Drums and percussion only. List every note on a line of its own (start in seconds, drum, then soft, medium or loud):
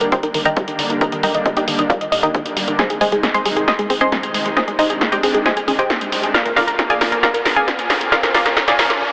0.01 closed hi-hat medium
0.12 kick loud
0.12 closed hi-hat medium
0.23 closed hi-hat medium
0.34 open hi-hat loud
0.45 closed hi-hat medium
0.57 kick loud
0.57 closed hi-hat medium
0.68 closed hi-hat medium
0.79 open hi-hat medium
0.90 closed hi-hat medium
1.01 kick loud
1.01 closed hi-hat medium
1.12 closed hi-hat medium
1.23 open hi-hat loud
1.34 closed hi-hat medium
1.46 kick loud
1.46 closed hi-hat medium
1.57 closed hi-hat medium
1.68 open hi-hat medium
1.79 closed hi-hat medium
1.90 kick loud
1.90 closed hi-hat medium
2.01 closed hi-hat medium
2.12 open hi-hat loud
2.23 closed hi-hat medium
2.34 kick loud
2.34 closed hi-hat medium
2.46 closed hi-hat medium
2.57 open hi-hat medium
2.68 closed hi-hat medium
2.79 kick loud
2.79 snare soft
2.79 closed hi-hat medium
2.90 closed hi-hat medium
3.01 open hi-hat loud
3.12 closed hi-hat medium
3.23 kick loud
3.23 snare soft
3.23 closed hi-hat medium
3.34 closed hi-hat medium
3.46 open hi-hat medium
3.57 closed hi-hat medium
3.68 kick loud
3.68 snare medium
3.68 closed hi-hat medium
3.79 closed hi-hat medium
3.90 open hi-hat loud
4.01 closed hi-hat medium
4.01 high conga medium
4.12 kick loud
4.12 snare medium
4.12 closed hi-hat medium
4.12 high conga medium
4.23 closed hi-hat medium
4.34 open hi-hat medium
4.46 closed hi-hat medium
4.57 kick loud
4.57 snare medium
4.57 closed hi-hat medium
4.68 closed hi-hat medium
4.79 open hi-hat loud
4.90 closed hi-hat medium
5.01 kick loud
5.01 snare medium
5.01 closed hi-hat medium
5.12 closed hi-hat medium
5.23 open hi-hat medium
5.35 closed hi-hat medium
5.46 kick loud
5.46 snare medium
5.46 closed hi-hat medium
5.57 closed hi-hat medium
5.68 open hi-hat loud
5.68 high conga medium
5.79 closed hi-hat medium
5.90 kick loud
5.90 snare medium
5.90 closed hi-hat medium
6.01 closed hi-hat medium
6.12 open hi-hat medium
6.23 closed hi-hat medium
6.35 kick loud
6.35 snare medium
6.35 closed hi-hat medium
6.46 closed hi-hat medium
6.57 snare medium
6.57 open hi-hat loud
6.68 closed hi-hat medium
6.79 kick loud
6.79 snare medium
6.79 closed hi-hat medium
6.90 closed hi-hat medium
7.01 snare medium
7.01 open hi-hat medium
7.12 closed hi-hat medium
7.23 kick loud
7.23 snare medium
7.23 closed hi-hat medium
7.34 closed hi-hat medium
7.46 snare medium
7.46 open hi-hat loud
7.57 closed hi-hat medium
7.57 high conga medium
7.68 kick loud
7.68 snare medium
7.68 closed hi-hat medium
7.68 high conga medium
7.79 closed hi-hat medium
7.90 snare medium
7.90 open hi-hat medium
8.01 closed hi-hat medium
8.12 kick loud
8.12 snare medium
8.12 closed hi-hat medium
8.23 snare medium
8.23 closed hi-hat medium
8.23 high conga medium
8.34 snare loud
8.34 open hi-hat loud
8.46 snare medium
8.46 closed hi-hat medium
8.57 kick loud
8.57 snare loud
8.57 closed hi-hat medium
8.68 snare medium
8.68 closed hi-hat medium
8.79 snare loud
8.79 open hi-hat medium
8.90 snare medium
8.90 closed hi-hat medium